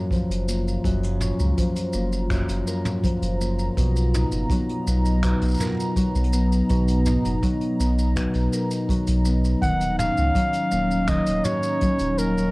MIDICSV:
0, 0, Header, 1, 6, 480
1, 0, Start_track
1, 0, Tempo, 731707
1, 555, Time_signature, 4, 2, 24, 8
1, 8209, End_track
2, 0, Start_track
2, 0, Title_t, "Flugelhorn"
2, 0, Program_c, 0, 56
2, 6311, Note_on_c, 0, 78, 109
2, 6536, Note_off_c, 0, 78, 0
2, 6554, Note_on_c, 0, 77, 110
2, 7276, Note_on_c, 0, 75, 88
2, 7286, Note_off_c, 0, 77, 0
2, 7509, Note_on_c, 0, 73, 95
2, 7519, Note_off_c, 0, 75, 0
2, 7993, Note_on_c, 0, 70, 88
2, 8003, Note_off_c, 0, 73, 0
2, 8209, Note_off_c, 0, 70, 0
2, 8209, End_track
3, 0, Start_track
3, 0, Title_t, "Analog synth pad"
3, 0, Program_c, 1, 89
3, 0, Note_on_c, 1, 65, 69
3, 0, Note_on_c, 1, 82, 76
3, 2841, Note_on_c, 1, 59, 72
3, 3054, Note_on_c, 1, 63, 65
3, 3954, Note_off_c, 1, 65, 0
3, 6313, Note_off_c, 1, 59, 0
3, 6531, Note_on_c, 1, 61, 87
3, 8209, Note_off_c, 1, 61, 0
3, 8209, Note_off_c, 1, 63, 0
3, 8209, Note_off_c, 1, 82, 0
3, 8209, End_track
4, 0, Start_track
4, 0, Title_t, "Harp"
4, 0, Program_c, 2, 46
4, 0, Note_on_c, 2, 42, 73
4, 0, Note_on_c, 2, 58, 54
4, 0, Note_on_c, 2, 61, 56
4, 0, Note_on_c, 2, 70, 59
4, 73, Note_on_c, 2, 53, 59
4, 311, Note_off_c, 2, 58, 0
4, 313, Note_on_c, 2, 58, 56
4, 544, Note_off_c, 2, 42, 0
4, 552, Note_on_c, 2, 42, 72
4, 784, Note_off_c, 2, 61, 0
4, 792, Note_on_c, 2, 61, 56
4, 1026, Note_off_c, 2, 53, 0
4, 1034, Note_on_c, 2, 53, 60
4, 1274, Note_off_c, 2, 58, 0
4, 1277, Note_on_c, 2, 58, 52
4, 1505, Note_off_c, 2, 42, 0
4, 1513, Note_on_c, 2, 42, 71
4, 1753, Note_off_c, 2, 70, 0
4, 1755, Note_on_c, 2, 70, 63
4, 1986, Note_off_c, 2, 53, 0
4, 1994, Note_on_c, 2, 53, 59
4, 2233, Note_off_c, 2, 58, 0
4, 2236, Note_on_c, 2, 58, 59
4, 2476, Note_on_c, 2, 47, 73
4, 2507, Note_off_c, 2, 42, 0
4, 2507, Note_off_c, 2, 53, 0
4, 2693, Note_off_c, 2, 61, 0
4, 2716, Note_on_c, 2, 63, 53
4, 2955, Note_on_c, 2, 54, 63
4, 3197, Note_on_c, 2, 59, 57
4, 3426, Note_off_c, 2, 47, 0
4, 3434, Note_on_c, 2, 47, 74
4, 3673, Note_off_c, 2, 70, 0
4, 3676, Note_on_c, 2, 70, 63
4, 3910, Note_off_c, 2, 54, 0
4, 3912, Note_on_c, 2, 54, 63
4, 4148, Note_off_c, 2, 59, 0
4, 4151, Note_on_c, 2, 59, 57
4, 4384, Note_off_c, 2, 47, 0
4, 4392, Note_on_c, 2, 47, 76
4, 4631, Note_off_c, 2, 63, 0
4, 4633, Note_on_c, 2, 63, 57
4, 4870, Note_off_c, 2, 54, 0
4, 4872, Note_on_c, 2, 54, 65
4, 5110, Note_off_c, 2, 59, 0
4, 5113, Note_on_c, 2, 59, 56
4, 5343, Note_off_c, 2, 47, 0
4, 5351, Note_on_c, 2, 47, 75
4, 5591, Note_off_c, 2, 70, 0
4, 5594, Note_on_c, 2, 70, 61
4, 5821, Note_off_c, 2, 58, 0
4, 5832, Note_off_c, 2, 54, 0
4, 5835, Note_on_c, 2, 54, 58
4, 6072, Note_off_c, 2, 59, 0
4, 6074, Note_on_c, 2, 59, 57
4, 6312, Note_on_c, 2, 51, 74
4, 6348, Note_off_c, 2, 47, 0
4, 6551, Note_on_c, 2, 61, 56
4, 6789, Note_off_c, 2, 54, 0
4, 6791, Note_on_c, 2, 54, 65
4, 7031, Note_on_c, 2, 58, 56
4, 7071, Note_off_c, 2, 59, 0
4, 7261, Note_off_c, 2, 51, 0
4, 7269, Note_on_c, 2, 51, 70
4, 7307, Note_off_c, 2, 54, 0
4, 7511, Note_on_c, 2, 66, 62
4, 7648, Note_off_c, 2, 63, 0
4, 7752, Note_on_c, 2, 54, 67
4, 7960, Note_off_c, 2, 70, 0
4, 7992, Note_off_c, 2, 58, 0
4, 7994, Note_on_c, 2, 58, 64
4, 8209, Note_off_c, 2, 51, 0
4, 8209, Note_off_c, 2, 54, 0
4, 8209, Note_off_c, 2, 58, 0
4, 8209, Note_off_c, 2, 61, 0
4, 8209, Note_off_c, 2, 66, 0
4, 8209, End_track
5, 0, Start_track
5, 0, Title_t, "Sub bass"
5, 0, Program_c, 3, 38
5, 196, Note_on_c, 3, 30, 90
5, 506, Note_off_c, 3, 30, 0
5, 553, Note_on_c, 3, 30, 86
5, 864, Note_off_c, 3, 30, 0
5, 915, Note_on_c, 3, 37, 71
5, 1004, Note_off_c, 3, 37, 0
5, 1274, Note_on_c, 3, 30, 101
5, 1585, Note_off_c, 3, 30, 0
5, 1631, Note_on_c, 3, 30, 77
5, 1722, Note_off_c, 3, 30, 0
5, 2113, Note_on_c, 3, 30, 94
5, 2424, Note_off_c, 3, 30, 0
5, 2475, Note_on_c, 3, 35, 93
5, 2785, Note_off_c, 3, 35, 0
5, 2834, Note_on_c, 3, 30, 70
5, 2923, Note_off_c, 3, 30, 0
5, 3195, Note_on_c, 3, 35, 97
5, 3505, Note_off_c, 3, 35, 0
5, 3555, Note_on_c, 3, 35, 81
5, 3644, Note_off_c, 3, 35, 0
5, 4035, Note_on_c, 3, 35, 96
5, 4345, Note_off_c, 3, 35, 0
5, 4397, Note_on_c, 3, 35, 89
5, 4706, Note_off_c, 3, 35, 0
5, 4758, Note_on_c, 3, 30, 72
5, 4845, Note_off_c, 3, 30, 0
5, 5117, Note_on_c, 3, 35, 96
5, 5426, Note_off_c, 3, 35, 0
5, 5475, Note_on_c, 3, 35, 75
5, 5564, Note_off_c, 3, 35, 0
5, 5956, Note_on_c, 3, 35, 94
5, 6266, Note_off_c, 3, 35, 0
5, 6312, Note_on_c, 3, 27, 92
5, 6624, Note_off_c, 3, 27, 0
5, 6678, Note_on_c, 3, 37, 77
5, 6765, Note_off_c, 3, 37, 0
5, 7035, Note_on_c, 3, 27, 100
5, 7345, Note_off_c, 3, 27, 0
5, 7396, Note_on_c, 3, 27, 72
5, 7484, Note_off_c, 3, 27, 0
5, 7873, Note_on_c, 3, 27, 95
5, 8184, Note_off_c, 3, 27, 0
5, 8209, End_track
6, 0, Start_track
6, 0, Title_t, "Drums"
6, 70, Note_on_c, 9, 36, 85
6, 77, Note_on_c, 9, 82, 57
6, 80, Note_on_c, 9, 42, 72
6, 136, Note_off_c, 9, 36, 0
6, 143, Note_off_c, 9, 82, 0
6, 146, Note_off_c, 9, 42, 0
6, 203, Note_on_c, 9, 42, 58
6, 205, Note_on_c, 9, 82, 39
6, 268, Note_off_c, 9, 42, 0
6, 271, Note_off_c, 9, 82, 0
6, 317, Note_on_c, 9, 82, 78
6, 383, Note_off_c, 9, 82, 0
6, 444, Note_on_c, 9, 82, 44
6, 510, Note_off_c, 9, 82, 0
6, 552, Note_on_c, 9, 36, 92
6, 554, Note_on_c, 9, 42, 66
6, 557, Note_on_c, 9, 82, 46
6, 617, Note_off_c, 9, 36, 0
6, 620, Note_off_c, 9, 42, 0
6, 623, Note_off_c, 9, 82, 0
6, 674, Note_on_c, 9, 42, 50
6, 683, Note_on_c, 9, 82, 37
6, 740, Note_off_c, 9, 42, 0
6, 748, Note_off_c, 9, 82, 0
6, 789, Note_on_c, 9, 45, 57
6, 795, Note_on_c, 9, 82, 77
6, 855, Note_off_c, 9, 45, 0
6, 860, Note_off_c, 9, 82, 0
6, 915, Note_on_c, 9, 82, 53
6, 980, Note_off_c, 9, 82, 0
6, 1033, Note_on_c, 9, 42, 69
6, 1035, Note_on_c, 9, 36, 91
6, 1037, Note_on_c, 9, 82, 57
6, 1099, Note_off_c, 9, 42, 0
6, 1101, Note_off_c, 9, 36, 0
6, 1102, Note_off_c, 9, 82, 0
6, 1154, Note_on_c, 9, 42, 56
6, 1155, Note_on_c, 9, 82, 42
6, 1219, Note_off_c, 9, 42, 0
6, 1221, Note_off_c, 9, 82, 0
6, 1266, Note_on_c, 9, 82, 74
6, 1331, Note_off_c, 9, 82, 0
6, 1395, Note_on_c, 9, 82, 49
6, 1460, Note_off_c, 9, 82, 0
6, 1511, Note_on_c, 9, 26, 69
6, 1512, Note_on_c, 9, 36, 100
6, 1512, Note_on_c, 9, 42, 75
6, 1517, Note_on_c, 9, 82, 59
6, 1576, Note_off_c, 9, 26, 0
6, 1577, Note_off_c, 9, 42, 0
6, 1578, Note_off_c, 9, 36, 0
6, 1583, Note_off_c, 9, 82, 0
6, 1633, Note_on_c, 9, 42, 58
6, 1634, Note_on_c, 9, 82, 40
6, 1698, Note_off_c, 9, 42, 0
6, 1700, Note_off_c, 9, 82, 0
6, 1755, Note_on_c, 9, 82, 70
6, 1820, Note_off_c, 9, 82, 0
6, 1871, Note_on_c, 9, 45, 76
6, 1875, Note_on_c, 9, 82, 53
6, 1937, Note_off_c, 9, 45, 0
6, 1941, Note_off_c, 9, 82, 0
6, 1993, Note_on_c, 9, 36, 91
6, 1995, Note_on_c, 9, 82, 53
6, 1999, Note_on_c, 9, 42, 74
6, 2059, Note_off_c, 9, 36, 0
6, 2060, Note_off_c, 9, 82, 0
6, 2064, Note_off_c, 9, 42, 0
6, 2115, Note_on_c, 9, 42, 56
6, 2118, Note_on_c, 9, 82, 35
6, 2181, Note_off_c, 9, 42, 0
6, 2183, Note_off_c, 9, 82, 0
6, 2238, Note_on_c, 9, 82, 79
6, 2304, Note_off_c, 9, 82, 0
6, 2355, Note_on_c, 9, 82, 49
6, 2421, Note_off_c, 9, 82, 0
6, 2475, Note_on_c, 9, 36, 97
6, 2475, Note_on_c, 9, 42, 71
6, 2479, Note_on_c, 9, 82, 58
6, 2540, Note_off_c, 9, 36, 0
6, 2540, Note_off_c, 9, 42, 0
6, 2545, Note_off_c, 9, 82, 0
6, 2599, Note_on_c, 9, 82, 41
6, 2665, Note_off_c, 9, 82, 0
6, 2719, Note_on_c, 9, 45, 67
6, 2719, Note_on_c, 9, 82, 79
6, 2784, Note_off_c, 9, 45, 0
6, 2785, Note_off_c, 9, 82, 0
6, 2832, Note_on_c, 9, 82, 54
6, 2898, Note_off_c, 9, 82, 0
6, 2950, Note_on_c, 9, 36, 103
6, 2953, Note_on_c, 9, 42, 73
6, 2955, Note_on_c, 9, 82, 49
6, 3015, Note_off_c, 9, 36, 0
6, 3019, Note_off_c, 9, 42, 0
6, 3021, Note_off_c, 9, 82, 0
6, 3076, Note_on_c, 9, 42, 54
6, 3142, Note_off_c, 9, 42, 0
6, 3195, Note_on_c, 9, 82, 79
6, 3197, Note_off_c, 9, 82, 0
6, 3197, Note_on_c, 9, 82, 36
6, 3263, Note_off_c, 9, 82, 0
6, 3314, Note_on_c, 9, 82, 51
6, 3380, Note_off_c, 9, 82, 0
6, 3429, Note_on_c, 9, 42, 77
6, 3430, Note_on_c, 9, 26, 80
6, 3434, Note_on_c, 9, 36, 100
6, 3435, Note_on_c, 9, 82, 65
6, 3495, Note_off_c, 9, 26, 0
6, 3495, Note_off_c, 9, 42, 0
6, 3499, Note_off_c, 9, 36, 0
6, 3501, Note_off_c, 9, 82, 0
6, 3550, Note_on_c, 9, 42, 53
6, 3555, Note_on_c, 9, 82, 17
6, 3574, Note_off_c, 9, 82, 0
6, 3574, Note_on_c, 9, 82, 20
6, 3595, Note_off_c, 9, 82, 0
6, 3595, Note_on_c, 9, 82, 23
6, 3613, Note_off_c, 9, 82, 0
6, 3613, Note_on_c, 9, 82, 27
6, 3616, Note_off_c, 9, 42, 0
6, 3635, Note_off_c, 9, 82, 0
6, 3635, Note_on_c, 9, 82, 31
6, 3654, Note_off_c, 9, 82, 0
6, 3654, Note_on_c, 9, 82, 32
6, 3674, Note_on_c, 9, 45, 64
6, 3676, Note_off_c, 9, 82, 0
6, 3676, Note_on_c, 9, 82, 85
6, 3688, Note_off_c, 9, 45, 0
6, 3688, Note_on_c, 9, 45, 55
6, 3703, Note_off_c, 9, 45, 0
6, 3703, Note_on_c, 9, 45, 43
6, 3718, Note_off_c, 9, 45, 0
6, 3718, Note_on_c, 9, 45, 38
6, 3732, Note_off_c, 9, 45, 0
6, 3732, Note_on_c, 9, 45, 29
6, 3741, Note_off_c, 9, 82, 0
6, 3750, Note_off_c, 9, 45, 0
6, 3750, Note_on_c, 9, 45, 24
6, 3766, Note_off_c, 9, 45, 0
6, 3766, Note_on_c, 9, 45, 19
6, 3782, Note_off_c, 9, 45, 0
6, 3782, Note_on_c, 9, 45, 16
6, 3805, Note_on_c, 9, 82, 53
6, 3847, Note_off_c, 9, 45, 0
6, 3870, Note_off_c, 9, 82, 0
6, 3911, Note_on_c, 9, 36, 84
6, 3914, Note_on_c, 9, 82, 63
6, 3915, Note_on_c, 9, 42, 67
6, 3976, Note_off_c, 9, 36, 0
6, 3980, Note_off_c, 9, 82, 0
6, 3981, Note_off_c, 9, 42, 0
6, 4038, Note_on_c, 9, 82, 38
6, 4092, Note_on_c, 9, 42, 54
6, 4103, Note_off_c, 9, 82, 0
6, 4152, Note_on_c, 9, 82, 81
6, 4158, Note_off_c, 9, 42, 0
6, 4218, Note_off_c, 9, 82, 0
6, 4279, Note_on_c, 9, 82, 47
6, 4345, Note_off_c, 9, 82, 0
6, 4390, Note_on_c, 9, 42, 62
6, 4396, Note_on_c, 9, 36, 100
6, 4397, Note_on_c, 9, 82, 57
6, 4455, Note_off_c, 9, 42, 0
6, 4462, Note_off_c, 9, 36, 0
6, 4462, Note_off_c, 9, 82, 0
6, 4515, Note_on_c, 9, 82, 42
6, 4519, Note_on_c, 9, 42, 52
6, 4580, Note_off_c, 9, 82, 0
6, 4585, Note_off_c, 9, 42, 0
6, 4631, Note_on_c, 9, 82, 72
6, 4634, Note_on_c, 9, 45, 60
6, 4697, Note_off_c, 9, 82, 0
6, 4700, Note_off_c, 9, 45, 0
6, 4756, Note_on_c, 9, 42, 45
6, 4758, Note_on_c, 9, 82, 48
6, 4821, Note_off_c, 9, 42, 0
6, 4823, Note_off_c, 9, 82, 0
6, 4873, Note_on_c, 9, 36, 86
6, 4873, Note_on_c, 9, 42, 70
6, 4874, Note_on_c, 9, 82, 52
6, 4938, Note_off_c, 9, 36, 0
6, 4938, Note_off_c, 9, 42, 0
6, 4940, Note_off_c, 9, 82, 0
6, 4989, Note_on_c, 9, 42, 48
6, 5055, Note_off_c, 9, 42, 0
6, 5119, Note_on_c, 9, 82, 78
6, 5184, Note_off_c, 9, 82, 0
6, 5239, Note_on_c, 9, 82, 45
6, 5305, Note_off_c, 9, 82, 0
6, 5356, Note_on_c, 9, 82, 65
6, 5357, Note_on_c, 9, 36, 92
6, 5359, Note_on_c, 9, 26, 73
6, 5359, Note_on_c, 9, 42, 66
6, 5422, Note_off_c, 9, 36, 0
6, 5422, Note_off_c, 9, 82, 0
6, 5425, Note_off_c, 9, 26, 0
6, 5425, Note_off_c, 9, 42, 0
6, 5468, Note_on_c, 9, 42, 60
6, 5477, Note_on_c, 9, 82, 40
6, 5533, Note_off_c, 9, 42, 0
6, 5543, Note_off_c, 9, 82, 0
6, 5595, Note_on_c, 9, 82, 83
6, 5661, Note_off_c, 9, 82, 0
6, 5713, Note_on_c, 9, 82, 53
6, 5714, Note_on_c, 9, 42, 46
6, 5779, Note_off_c, 9, 82, 0
6, 5780, Note_off_c, 9, 42, 0
6, 5832, Note_on_c, 9, 36, 92
6, 5837, Note_on_c, 9, 42, 79
6, 5840, Note_on_c, 9, 82, 49
6, 5898, Note_off_c, 9, 36, 0
6, 5902, Note_off_c, 9, 42, 0
6, 5906, Note_off_c, 9, 82, 0
6, 5951, Note_on_c, 9, 82, 43
6, 5952, Note_on_c, 9, 42, 57
6, 6016, Note_off_c, 9, 82, 0
6, 6018, Note_off_c, 9, 42, 0
6, 6068, Note_on_c, 9, 82, 83
6, 6133, Note_off_c, 9, 82, 0
6, 6196, Note_on_c, 9, 82, 49
6, 6261, Note_off_c, 9, 82, 0
6, 6311, Note_on_c, 9, 36, 96
6, 6311, Note_on_c, 9, 42, 61
6, 6316, Note_on_c, 9, 82, 53
6, 6376, Note_off_c, 9, 36, 0
6, 6377, Note_off_c, 9, 42, 0
6, 6382, Note_off_c, 9, 82, 0
6, 6432, Note_on_c, 9, 42, 49
6, 6434, Note_on_c, 9, 82, 39
6, 6498, Note_off_c, 9, 42, 0
6, 6500, Note_off_c, 9, 82, 0
6, 6552, Note_on_c, 9, 45, 74
6, 6558, Note_on_c, 9, 82, 77
6, 6618, Note_off_c, 9, 45, 0
6, 6623, Note_off_c, 9, 82, 0
6, 6673, Note_on_c, 9, 82, 49
6, 6739, Note_off_c, 9, 82, 0
6, 6790, Note_on_c, 9, 36, 96
6, 6792, Note_on_c, 9, 82, 47
6, 6793, Note_on_c, 9, 42, 77
6, 6856, Note_off_c, 9, 36, 0
6, 6857, Note_off_c, 9, 82, 0
6, 6859, Note_off_c, 9, 42, 0
6, 6906, Note_on_c, 9, 42, 52
6, 6913, Note_on_c, 9, 82, 37
6, 6972, Note_off_c, 9, 42, 0
6, 6979, Note_off_c, 9, 82, 0
6, 7029, Note_on_c, 9, 82, 80
6, 7095, Note_off_c, 9, 82, 0
6, 7158, Note_on_c, 9, 82, 44
6, 7224, Note_off_c, 9, 82, 0
6, 7265, Note_on_c, 9, 42, 67
6, 7267, Note_on_c, 9, 26, 70
6, 7268, Note_on_c, 9, 82, 59
6, 7273, Note_on_c, 9, 36, 107
6, 7331, Note_off_c, 9, 42, 0
6, 7332, Note_off_c, 9, 26, 0
6, 7334, Note_off_c, 9, 82, 0
6, 7338, Note_off_c, 9, 36, 0
6, 7390, Note_on_c, 9, 42, 58
6, 7390, Note_on_c, 9, 82, 45
6, 7456, Note_off_c, 9, 42, 0
6, 7456, Note_off_c, 9, 82, 0
6, 7508, Note_on_c, 9, 82, 83
6, 7509, Note_on_c, 9, 45, 71
6, 7574, Note_off_c, 9, 82, 0
6, 7575, Note_off_c, 9, 45, 0
6, 7630, Note_on_c, 9, 82, 48
6, 7695, Note_off_c, 9, 82, 0
6, 7747, Note_on_c, 9, 42, 75
6, 7754, Note_on_c, 9, 36, 92
6, 7757, Note_on_c, 9, 82, 58
6, 7812, Note_off_c, 9, 42, 0
6, 7820, Note_off_c, 9, 36, 0
6, 7823, Note_off_c, 9, 82, 0
6, 7866, Note_on_c, 9, 82, 37
6, 7870, Note_on_c, 9, 42, 52
6, 7932, Note_off_c, 9, 82, 0
6, 7935, Note_off_c, 9, 42, 0
6, 7993, Note_on_c, 9, 82, 80
6, 8058, Note_off_c, 9, 82, 0
6, 8120, Note_on_c, 9, 82, 48
6, 8185, Note_off_c, 9, 82, 0
6, 8209, End_track
0, 0, End_of_file